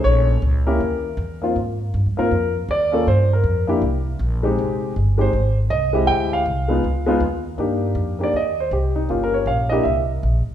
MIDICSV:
0, 0, Header, 1, 4, 480
1, 0, Start_track
1, 0, Key_signature, -3, "minor"
1, 0, Tempo, 376884
1, 61, Time_signature, 4, 2, 24, 8
1, 13430, End_track
2, 0, Start_track
2, 0, Title_t, "Grand piano"
2, 0, Program_c, 0, 0
2, 0, Note_on_c, 0, 57, 53
2, 0, Note_on_c, 0, 61, 52
2, 0, Note_on_c, 0, 63, 49
2, 0, Note_on_c, 0, 68, 56
2, 52, Note_on_c, 0, 73, 100
2, 500, Note_off_c, 0, 57, 0
2, 503, Note_off_c, 0, 73, 0
2, 506, Note_off_c, 0, 61, 0
2, 511, Note_off_c, 0, 63, 0
2, 514, Note_off_c, 0, 68, 0
2, 847, Note_on_c, 0, 58, 66
2, 850, Note_on_c, 0, 70, 79
2, 852, Note_on_c, 0, 64, 60
2, 853, Note_on_c, 0, 61, 64
2, 858, Note_on_c, 0, 67, 76
2, 1005, Note_off_c, 0, 58, 0
2, 1008, Note_off_c, 0, 61, 0
2, 1008, Note_off_c, 0, 64, 0
2, 1010, Note_off_c, 0, 67, 0
2, 1757, Note_off_c, 0, 70, 0
2, 1804, Note_on_c, 0, 58, 64
2, 1820, Note_on_c, 0, 60, 56
2, 1824, Note_on_c, 0, 63, 53
2, 1829, Note_on_c, 0, 65, 73
2, 1964, Note_off_c, 0, 58, 0
2, 1972, Note_off_c, 0, 60, 0
2, 1974, Note_off_c, 0, 63, 0
2, 1976, Note_off_c, 0, 65, 0
2, 2764, Note_on_c, 0, 60, 58
2, 2765, Note_on_c, 0, 58, 68
2, 2782, Note_on_c, 0, 63, 55
2, 2782, Note_on_c, 0, 65, 75
2, 2787, Note_on_c, 0, 70, 84
2, 2924, Note_off_c, 0, 58, 0
2, 2924, Note_off_c, 0, 60, 0
2, 2932, Note_off_c, 0, 63, 0
2, 2933, Note_off_c, 0, 65, 0
2, 3223, Note_off_c, 0, 70, 0
2, 3448, Note_on_c, 0, 74, 94
2, 3721, Note_on_c, 0, 58, 71
2, 3730, Note_on_c, 0, 61, 62
2, 3734, Note_on_c, 0, 65, 58
2, 3743, Note_on_c, 0, 69, 72
2, 3882, Note_off_c, 0, 58, 0
2, 3882, Note_off_c, 0, 74, 0
2, 3887, Note_off_c, 0, 61, 0
2, 3889, Note_off_c, 0, 65, 0
2, 3893, Note_off_c, 0, 69, 0
2, 3920, Note_on_c, 0, 72, 99
2, 4223, Note_off_c, 0, 72, 0
2, 4245, Note_on_c, 0, 70, 72
2, 4679, Note_on_c, 0, 58, 69
2, 4690, Note_on_c, 0, 62, 59
2, 4692, Note_on_c, 0, 64, 63
2, 4704, Note_on_c, 0, 67, 77
2, 4841, Note_off_c, 0, 58, 0
2, 4847, Note_off_c, 0, 62, 0
2, 4848, Note_off_c, 0, 64, 0
2, 4854, Note_off_c, 0, 67, 0
2, 5614, Note_off_c, 0, 70, 0
2, 5644, Note_on_c, 0, 56, 67
2, 5652, Note_on_c, 0, 63, 64
2, 5653, Note_on_c, 0, 60, 65
2, 5667, Note_on_c, 0, 67, 72
2, 6266, Note_off_c, 0, 56, 0
2, 6270, Note_off_c, 0, 60, 0
2, 6270, Note_off_c, 0, 63, 0
2, 6277, Note_off_c, 0, 67, 0
2, 6594, Note_on_c, 0, 56, 62
2, 6601, Note_on_c, 0, 60, 53
2, 6607, Note_on_c, 0, 67, 71
2, 6609, Note_on_c, 0, 63, 57
2, 6635, Note_on_c, 0, 72, 96
2, 6758, Note_off_c, 0, 56, 0
2, 6762, Note_off_c, 0, 60, 0
2, 6765, Note_off_c, 0, 67, 0
2, 6766, Note_off_c, 0, 63, 0
2, 7068, Note_off_c, 0, 72, 0
2, 7263, Note_on_c, 0, 75, 89
2, 7552, Note_on_c, 0, 56, 66
2, 7554, Note_on_c, 0, 60, 63
2, 7568, Note_on_c, 0, 64, 63
2, 7572, Note_on_c, 0, 67, 79
2, 7733, Note_on_c, 0, 79, 104
2, 7756, Note_off_c, 0, 75, 0
2, 8019, Note_off_c, 0, 79, 0
2, 8064, Note_on_c, 0, 77, 88
2, 8180, Note_off_c, 0, 56, 0
2, 8180, Note_off_c, 0, 60, 0
2, 8188, Note_off_c, 0, 64, 0
2, 8190, Note_off_c, 0, 67, 0
2, 8513, Note_on_c, 0, 56, 64
2, 8523, Note_on_c, 0, 59, 63
2, 8532, Note_on_c, 0, 63, 58
2, 8541, Note_on_c, 0, 65, 67
2, 8678, Note_off_c, 0, 56, 0
2, 8683, Note_off_c, 0, 59, 0
2, 8687, Note_off_c, 0, 63, 0
2, 8692, Note_off_c, 0, 65, 0
2, 8996, Note_on_c, 0, 56, 78
2, 9003, Note_on_c, 0, 59, 74
2, 9016, Note_on_c, 0, 63, 69
2, 9021, Note_on_c, 0, 65, 81
2, 9159, Note_off_c, 0, 56, 0
2, 9163, Note_off_c, 0, 59, 0
2, 9169, Note_off_c, 0, 63, 0
2, 9172, Note_off_c, 0, 65, 0
2, 9443, Note_off_c, 0, 77, 0
2, 9652, Note_on_c, 0, 58, 67
2, 9662, Note_on_c, 0, 62, 56
2, 9669, Note_on_c, 0, 63, 55
2, 9680, Note_on_c, 0, 67, 69
2, 10379, Note_off_c, 0, 58, 0
2, 10384, Note_off_c, 0, 62, 0
2, 10387, Note_off_c, 0, 63, 0
2, 10393, Note_off_c, 0, 67, 0
2, 10430, Note_on_c, 0, 58, 59
2, 10444, Note_on_c, 0, 63, 48
2, 10445, Note_on_c, 0, 62, 50
2, 10456, Note_on_c, 0, 67, 61
2, 10488, Note_on_c, 0, 74, 81
2, 10596, Note_off_c, 0, 58, 0
2, 10603, Note_off_c, 0, 62, 0
2, 10603, Note_off_c, 0, 63, 0
2, 10609, Note_off_c, 0, 67, 0
2, 10638, Note_off_c, 0, 74, 0
2, 10651, Note_on_c, 0, 75, 80
2, 10930, Note_off_c, 0, 75, 0
2, 10957, Note_on_c, 0, 72, 79
2, 11112, Note_off_c, 0, 72, 0
2, 11117, Note_on_c, 0, 67, 72
2, 11403, Note_off_c, 0, 67, 0
2, 11407, Note_on_c, 0, 63, 66
2, 11575, Note_on_c, 0, 58, 52
2, 11577, Note_off_c, 0, 63, 0
2, 11583, Note_on_c, 0, 61, 46
2, 11589, Note_on_c, 0, 65, 67
2, 11591, Note_on_c, 0, 67, 53
2, 11740, Note_off_c, 0, 65, 0
2, 11761, Note_on_c, 0, 70, 77
2, 11895, Note_on_c, 0, 73, 76
2, 11906, Note_off_c, 0, 70, 0
2, 12052, Note_off_c, 0, 73, 0
2, 12063, Note_on_c, 0, 77, 82
2, 12300, Note_off_c, 0, 58, 0
2, 12304, Note_off_c, 0, 61, 0
2, 12308, Note_off_c, 0, 67, 0
2, 12347, Note_on_c, 0, 75, 86
2, 12356, Note_off_c, 0, 77, 0
2, 12365, Note_on_c, 0, 58, 66
2, 12370, Note_on_c, 0, 62, 61
2, 12374, Note_on_c, 0, 64, 57
2, 12387, Note_on_c, 0, 67, 76
2, 12523, Note_off_c, 0, 58, 0
2, 12525, Note_off_c, 0, 62, 0
2, 12525, Note_on_c, 0, 76, 77
2, 12526, Note_off_c, 0, 75, 0
2, 12527, Note_off_c, 0, 64, 0
2, 12534, Note_off_c, 0, 67, 0
2, 12711, Note_off_c, 0, 76, 0
2, 13430, End_track
3, 0, Start_track
3, 0, Title_t, "Upright bass"
3, 0, Program_c, 1, 32
3, 56, Note_on_c, 1, 34, 86
3, 524, Note_off_c, 1, 34, 0
3, 536, Note_on_c, 1, 37, 95
3, 1005, Note_off_c, 1, 37, 0
3, 1026, Note_on_c, 1, 39, 78
3, 1485, Note_off_c, 1, 39, 0
3, 1492, Note_on_c, 1, 40, 92
3, 1962, Note_off_c, 1, 40, 0
3, 1983, Note_on_c, 1, 44, 80
3, 2448, Note_off_c, 1, 44, 0
3, 2469, Note_on_c, 1, 43, 90
3, 2627, Note_on_c, 1, 41, 54
3, 2646, Note_off_c, 1, 43, 0
3, 2780, Note_off_c, 1, 41, 0
3, 2787, Note_on_c, 1, 39, 61
3, 2934, Note_off_c, 1, 39, 0
3, 2945, Note_on_c, 1, 41, 75
3, 3409, Note_off_c, 1, 41, 0
3, 3421, Note_on_c, 1, 39, 87
3, 3887, Note_off_c, 1, 39, 0
3, 3909, Note_on_c, 1, 43, 76
3, 4371, Note_off_c, 1, 43, 0
3, 4377, Note_on_c, 1, 41, 90
3, 4845, Note_off_c, 1, 41, 0
3, 4861, Note_on_c, 1, 36, 82
3, 5327, Note_off_c, 1, 36, 0
3, 5340, Note_on_c, 1, 34, 90
3, 5806, Note_off_c, 1, 34, 0
3, 5840, Note_on_c, 1, 29, 81
3, 6297, Note_off_c, 1, 29, 0
3, 6320, Note_on_c, 1, 31, 90
3, 6777, Note_off_c, 1, 31, 0
3, 6789, Note_on_c, 1, 32, 84
3, 7251, Note_off_c, 1, 32, 0
3, 7267, Note_on_c, 1, 36, 98
3, 7730, Note_off_c, 1, 36, 0
3, 7755, Note_on_c, 1, 38, 83
3, 8214, Note_off_c, 1, 38, 0
3, 8221, Note_on_c, 1, 36, 83
3, 8687, Note_off_c, 1, 36, 0
3, 8712, Note_on_c, 1, 37, 77
3, 9167, Note_off_c, 1, 37, 0
3, 9175, Note_on_c, 1, 39, 94
3, 9643, Note_off_c, 1, 39, 0
3, 9656, Note_on_c, 1, 43, 73
3, 10117, Note_off_c, 1, 43, 0
3, 10125, Note_on_c, 1, 41, 88
3, 10598, Note_off_c, 1, 41, 0
3, 10615, Note_on_c, 1, 39, 75
3, 11083, Note_off_c, 1, 39, 0
3, 11096, Note_on_c, 1, 36, 85
3, 11564, Note_off_c, 1, 36, 0
3, 11576, Note_on_c, 1, 31, 77
3, 12038, Note_off_c, 1, 31, 0
3, 12046, Note_on_c, 1, 34, 86
3, 12518, Note_off_c, 1, 34, 0
3, 12548, Note_on_c, 1, 36, 81
3, 13009, Note_off_c, 1, 36, 0
3, 13030, Note_on_c, 1, 34, 90
3, 13307, Note_off_c, 1, 34, 0
3, 13430, End_track
4, 0, Start_track
4, 0, Title_t, "Muted upright bass strokes"
4, 13334, Note_on_c, 9, 29, 36
4, 13430, Note_off_c, 9, 29, 0
4, 13430, End_track
0, 0, End_of_file